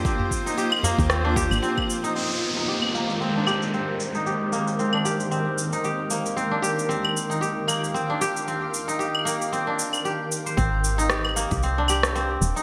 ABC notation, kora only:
X:1
M:4/4
L:1/16
Q:"Swing 16ths" 1/4=114
K:Ablyd
V:1 name="Kora"
C z2 E G2 B,2 C D G z C z2 E | C z2 E G2 B,2 C D G z C z2 E | G2 B,2 C D G z C z2 E G2 B,2 | C D G z C z2 E G2 B,2 C D G z |
C z2 E G2 B,2 C D z2 G z2 c | C z2 E G2 B,2 C D G z C z2 E |]